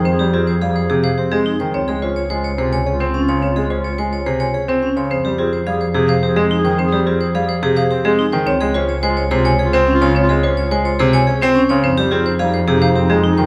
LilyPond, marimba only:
\new Staff \with { instrumentName = "Marimba" } { \time 3/4 \key f \minor \tempo 4 = 107 c''16 r16 aes'16 r16 f''16 r16 aes'16 f''16 r16 aes'16 r16 g''16 | des''16 r16 c''16 r16 aes''16 r16 c''16 aes''16 r16 c''16 r16 c'''16 | des''16 r16 c''16 r16 aes''16 r16 c''16 aes''16 r16 c''16 r16 c'''16 | c''16 r16 aes'16 r16 f''16 r16 aes'16 f''16 r16 aes'16 r16 g''16 |
c''16 r16 aes'16 r16 f''16 r16 aes'16 f''16 r16 aes'16 r16 g''16 | des''16 r16 c''16 r16 aes''16 r16 c''16 aes''16 r16 c''16 r16 c'''16 | des''16 r16 c''16 r16 aes''16 r16 c''16 aes''16 r16 c''16 r16 c'''16 | c''16 r16 aes'16 r16 f''16 r16 aes'16 f''16 r16 aes'16 r16 g''16 | }